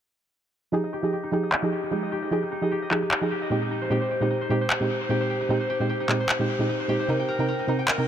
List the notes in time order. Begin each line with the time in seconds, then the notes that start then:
0.72 F3 D#4 G4 G#4
0.84 D#5
0.93 G4
1.02 F3 D#4 G4 G#4 D#5
1.13 G4
1.23 D#4
1.31 F3 D#4 G4 G#4
1.43 D#5
1.52 G4, clap
1.62 F3 D#4 G4 G#4 D#5
1.72 G4
1.83 D#4
1.91 F3 G#3 D#4 G4
2.03 D#5
2.12 G4
2.22 D#5
2.31 F3 D#4 G4 G#4
2.42 D#4
2.52 D#4
2.61 F3 D#4 G4 G#4 D#5
2.71 G4
2.82 D#5
2.90 F3 D#4 G4 G#4, clap
3.02 D#4
3.11 D#4, clap
3.21 F3 D#4 G4 G#4 D#5
3.31 G4
3.42 D#5
3.50 A#2 G#3 C4 D#4 G4
3.62 D#4
3.71 D#4
3.82 C5
3.90 A#2 G#3 C4 D#4 G4
4.01 C5
4.10 G4
4.20 A#2 G#3 C4 D#4 G4
4.30 D#4
4.41 C5
4.49 A#2 G#3 C4 D#4 G4
4.61 C5
4.70 G4, clap
4.80 A#2 G#3 C4 D#4 G4
4.90 D#4
5.01 C5
5.09 A#2 G#3 C4 D#4 G4
5.21 C5
5.30 G4
5.41 D#4
5.49 A#2 G#3 C4 D#4 G4
5.60 C5
5.70 G4
5.79 A#2 G#3 C4 D#4 G4 C5
5.89 G4
6.00 D#4
6.08 A#2 G#3 C4 D#4 G4, clap
6.20 C5
6.29 G4, clap
6.39 A#2 G#3 C4 D#4 G4 C5
6.49 G4
6.59 A#2 G#3 C4 D#4 G4
6.69 D#4
6.80 C5
6.88 A#2 G#3 C4 D#4 G4
6.99 C5
7.08 C3 C4 D#4 A#4
7.19 G5
7.28 A#4
7.38 C3 C4 D#4 A#4 G5
7.48 A#4
7.59 D#4
7.67 C3 C4 D#4 A#4
7.79 G5
7.88 A#4, clap
7.98 C3 C4 D#4 A#4 G5